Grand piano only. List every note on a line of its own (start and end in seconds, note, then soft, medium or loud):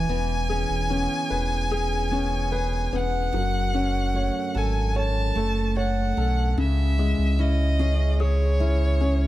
0.00 2.89 E3 soft
0.09 1.67 B3 soft
0.49 1.70 G#4 soft
0.90 2.11 C#4 soft
1.30 2.51 B4 soft
1.72 3.29 G#4 soft
2.12 3.30 C#4 soft
2.52 3.31 B4 soft
2.93 3.32 B3 soft
3.34 6.54 F#3 soft
3.75 5.32 C#4 soft
4.16 4.95 C#5 soft
4.56 5.36 A4 soft
4.96 5.75 C#5 soft
5.37 6.16 A4 soft
5.77 6.55 C#5 soft
6.18 6.57 A4 soft
6.58 9.27 C#3 medium
6.99 8.57 G#3 soft
7.39 8.59 E4 soft
7.80 8.99 C#4 soft
8.20 9.27 G#4 soft
8.60 9.27 E4 soft
9.01 9.27 C#4 soft